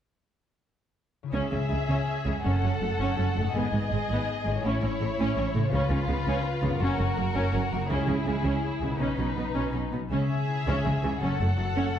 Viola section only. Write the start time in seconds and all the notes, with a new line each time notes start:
1.33 C#4
1.51 C#4
1.70 G#3
1.89 C#4
2.26 G#3
2.44 C#4
2.63 C#4
2.81 A3
2.99 C#4
3.18 C#4
3.37 A3
3.55 B3
3.75 B3
3.93 G#3
4.11 B3
4.47 G#3
4.65 C#4
4.83 C#4
5.01 A3
5.19 C#4
5.38 C#4
5.55 A3
5.74 C#4
5.91 C#4
6.09 B3
6.27 C#4
6.65 B3
6.83 C#4
7.00 C#4
7.17 A#3
7.35 C#4
7.53 C#4
7.72 A#3
7.90 C#4
8.09 C#4
8.27 G#3
8.45 C#4
8.81 G#3
8.99 C#4
9.18 C#4
9.37 B3
9.55 C#4
9.72 C#4
9.92 B3
10.11 C#4
10.67 C#4
10.85 G#3
11.03 E3
11.21 C#4
11.39 A3
11.56 F#3
11.76 C#4